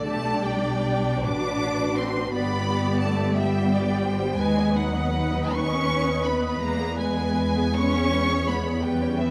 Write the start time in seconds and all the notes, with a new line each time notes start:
0.05 B1 A3 D4 G4 D5 A5
0.44 G3 G5
1.23 A1 D4 F#4 B4 D6
1.96 C4 C6
2.33 G1 B3 G4 D5 B5
3.00 A3 A5
3.35 G3 B3 G4 E5 G5
3.72 D5
4.05 C5
4.38 D#2 G#3 D#4 B4 G#5
4.57 B3 D#5
4.74 F#3 D#4 B4 F#5
4.93 B3 D#5
5.13 D#4 B4
5.32 B3 D#5
5.51 C#4 D#4 B4 C#6
5.68 B3 D#5
5.87 D#4 B4
6.04 B3 D#5
6.23 B3 D#4 B4 B5
6.41 B3 D#5
6.59 E2 G#3 A#3 B4 A#5
6.78 B3 G#4
6.96 G#3 B4 G#5
7.16 B3 G#4
7.36 G#3 B4
7.56 B3 G#4
7.75 G#3 C#4 B4 C#5 C#6
7.94 B3 G#4
8.12 G#3 B4
8.30 B3 G#4
8.48 G#3 B3 B4 B5
8.65 B3 G#4
8.83 G3 B3 B4 G5
9.01 C#4 C#5
9.19 E3 B3 B4 E5